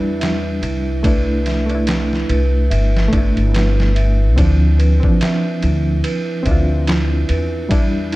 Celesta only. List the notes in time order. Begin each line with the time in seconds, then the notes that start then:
Already playing: E4 B4 E5
0.20 E5
0.62 E4
1.04 B4
1.46 E5
1.88 E4
2.29 B4
2.70 E5
3.12 E4
3.54 B4
3.96 E5
4.37 E4
4.78 B4
5.21 E5
5.63 E4
6.04 B4
6.46 E5
6.87 E4
7.29 B4
7.70 E5
8.12 E4